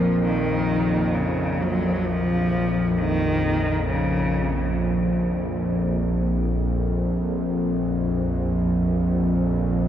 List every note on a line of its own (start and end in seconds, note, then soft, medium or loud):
0.00 5.66 A#1 medium
0.00 5.66 F2 medium
0.00 0.23 F3 loud
0.00 5.69 A#3 medium
0.00 5.69 F4 medium
0.00 5.69 A#4 medium
0.25 1.16 D#3 medium
1.14 1.63 C#3 medium
1.61 2.08 F#3 medium
2.06 2.99 F3 loud
2.97 3.87 D#3 medium
3.87 4.74 C#3 medium
5.67 9.88 A#1 medium
5.67 9.88 F2 medium